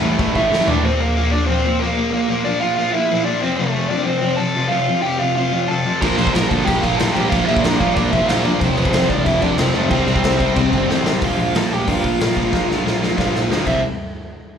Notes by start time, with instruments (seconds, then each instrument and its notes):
0.02 picked electric bass A1, overdriven electric guitar A2 E3 A3
0.19 picked electric bass A1, overdriven electric guitar A2 E3 A3, kick, crash
0.35 picked electric bass A1, overdriven electric guitar A2 E3 A3, lead electric guitar E4 E5, kick
0.50 picked electric bass A1, overdriven electric guitar A2 E3 A3, snare
0.68 overdriven electric guitar A2 E3 A3, lead electric guitar D4 D5, floor tom
0.84 overdriven electric guitar A#2 F3 A#3, lead electric guitar C4 C5
1.00 overdriven electric guitar A#2 F3 A#3, lead electric guitar A#3 A#4
1.17 overdriven electric guitar A#2 F3 A#3
1.32 overdriven electric guitar A#2 F3 A#3, lead electric guitar D4 D5
1.47 overdriven electric guitar A#2 F3 A#3, lead electric guitar C4 C5
1.64 overdriven electric guitar A#2 F3 A#3
1.79 overdriven electric guitar A#2 F3 A#3, lead electric guitar A#3 A#4
1.97 overdriven electric guitar A#2 F3 A#3
2.11 overdriven electric guitar A#2 F3 A#3, lead electric guitar A#3 A#4
2.28 overdriven electric guitar A#2 F3 A#3
2.44 overdriven electric guitar A#2 F3 A#3, lead electric guitar D4 D5
2.60 overdriven electric guitar A#2 F3 A#3, lead electric guitar F4 F5
2.76 overdriven electric guitar A#2 F3 A#3, lead electric guitar F4 F5
2.92 overdriven electric guitar A#2 F3 A#3, lead electric guitar E4 E5
3.10 overdriven electric guitar A#2 F3 A#3
3.24 overdriven electric guitar A#2 F3 A#3, lead electric guitar D4 D5
3.41 overdriven electric guitar F2 C3 F3, lead electric guitar C4 C5
3.57 overdriven electric guitar F2 C3 F3, lead electric guitar A3 A4
3.75 overdriven electric guitar F2 C3 F3
3.88 overdriven electric guitar F2 C3 F3, lead electric guitar D4 D5
4.04 overdriven electric guitar F2 C3 F3, lead electric guitar C4 C5
4.21 overdriven electric guitar F2 C3 F3
4.37 overdriven electric guitar F2 C3 F3, lead electric guitar A4 A5
4.55 overdriven electric guitar F2 C3 F3
4.68 overdriven electric guitar F2 C3 F3, lead electric guitar F4 F5
4.88 overdriven electric guitar F2 C3 F3
5.02 overdriven electric guitar F2 C3 F3, lead electric guitar G4 G5
5.19 overdriven electric guitar F2 C3 F3, lead electric guitar F4 F5
5.36 overdriven electric guitar F2 C3 F3, lead electric guitar F4 F5
5.53 overdriven electric guitar F2 C3 F3
5.68 overdriven electric guitar F2 C3 F3, lead electric guitar A4 A5
5.86 overdriven electric guitar F2 C3 F3
6.01 picked electric bass A#1, overdriven electric guitar A#2 F3 A#3, lead electric guitar A#4 A#5, kick, crash
6.16 picked electric bass A#1, overdriven electric guitar A#2 F3 A#3, lead electric guitar C5 C6, crash
6.27 kick
6.32 picked electric bass A#1, overdriven electric guitar A#2 F3 A#3, lead electric guitar A#4 A#5, snare, crash
6.49 picked electric bass D2, overdriven electric guitar A#2 F3 A#3, lead electric guitar A4 A5, kick, crash
6.65 picked electric bass A#1, overdriven electric guitar A#2 F3 A#3, lead electric guitar G4 G5, kick, crash
6.81 picked electric bass A#1, overdriven electric guitar A#2 F3 A#3, lead electric guitar F4 F5, kick, crash
6.97 picked electric bass A#1, overdriven electric guitar A#2 F3, lead electric guitar A4 A5, crash
7.01 overdriven electric guitar A#3, snare
7.12 overdriven electric guitar A#3, lead electric guitar G4 G5
7.16 picked electric bass A#1, overdriven electric guitar A#2 F3, crash
7.29 picked electric bass A#1, overdriven electric guitar A#2 F3, lead electric guitar F4 F5, kick, crash
7.33 overdriven electric guitar A#3
7.46 picked electric bass A#1, overdriven electric guitar A#2 F3 A#3, lead electric guitar E4 E5, crash
7.57 kick
7.61 picked electric bass A#1, overdriven electric guitar A#2 F3, lead electric guitar D4 D5, crash
7.65 overdriven electric guitar A#3, snare
7.78 picked electric bass A#2, overdriven electric guitar F3 A#3, lead electric guitar F4 F5, kick, crash
7.82 overdriven electric guitar A#2
7.93 picked electric bass A#1, overdriven electric guitar A#2 F3, lead electric guitar D4 D5, kick, crash
7.98 overdriven electric guitar A#3
8.11 picked electric bass F1, overdriven electric guitar A#2 F3 A#3, lead electric guitar E4 E5, kick, crash
8.27 picked electric bass A#1, overdriven electric guitar A#2 F3 A#3, lead electric guitar F4 F5, snare, crash
8.43 overdriven electric guitar A#2 F3 A#3, lead electric guitar D4 D5, crash
8.60 picked electric bass F1, overdriven electric guitar F2 C3 F3, lead electric guitar C4 C5, kick, crash
8.75 picked electric bass F1, overdriven electric guitar F2 C3 F3, lead electric guitar B3 B4, crash
8.85 kick
8.92 picked electric bass F1, overdriven electric guitar F2 C3 F3, lead electric guitar C4 C5, snare, crash
9.08 picked electric bass A1, overdriven electric guitar F2 C3 F3, lead electric guitar D4 D5, kick, crash
9.26 picked electric bass F1, overdriven electric guitar F2 C3 F3, lead electric guitar E4 E5, kick, crash
9.41 picked electric bass F1, overdriven electric guitar F2 C3 F3, lead electric guitar D4 D5, kick, crash
9.58 picked electric bass F1, overdriven electric guitar F2 C3 F3, lead electric guitar C4 C5, snare, crash
9.74 picked electric bass F1, overdriven electric guitar F2 C3 F3, lead electric guitar A3 A4, crash
9.90 picked electric bass C2, overdriven electric guitar C3 G3 C4, lead electric guitar C4 C5, kick, crash
10.07 picked electric bass C2, overdriven electric guitar C3 G3 C4, crash
10.16 kick
10.24 picked electric bass C2, overdriven electric guitar C3 G3 C4, snare, crash
10.40 picked electric bass C3, overdriven electric guitar C3 G3 C4, kick, crash
10.56 picked electric bass C2, overdriven electric guitar C3 G3 C4, kick, crash
10.73 picked electric bass G1, overdriven electric guitar C3 G3 C4, kick, crash
10.89 picked electric bass A1, overdriven electric guitar C3 G3 C4, snare
11.06 overdriven electric guitar C3 G3 C4, snare
11.21 picked electric bass A#1, overdriven electric guitar A#2 F3 A#3, lead electric guitar F4 F5, kick, open hi-hat
11.38 picked electric bass A#1, lead electric guitar F4 F5
11.55 picked electric bass A#1, overdriven electric guitar A#2 F3 A#3, lead electric guitar A4 A5, snare, open hi-hat
11.71 overdriven electric guitar A#2 F3 A#3, lead electric guitar G4 G5
11.87 picked electric bass G2, overdriven electric guitar A#2 F3 A#3, lead electric guitar F4 F5, kick, open hi-hat
12.04 picked electric bass A#1, kick
12.20 picked electric bass A#1, overdriven electric guitar A#2 F3 A#3, snare, open hi-hat
12.37 overdriven electric guitar A#2 F3 A#3, kick
12.53 picked electric bass A#1, overdriven electric guitar A#2 F3 A#3, kick, snare
12.68 picked electric bass A#1, snare
12.85 picked electric bass A#1, overdriven electric guitar A#2 F3 A#3, snare
13.01 overdriven electric guitar A#2 F3 A#3, snare
13.17 picked electric bass G2, overdriven electric guitar A#2 F3 A#3, kick, snare
13.34 picked electric bass A#1, snare
13.51 picked electric bass D2, overdriven electric guitar A#2 F3 A#3, snare
13.66 picked electric bass C2, overdriven electric guitar C3 G3 C4, lead electric guitar E5, kick, crash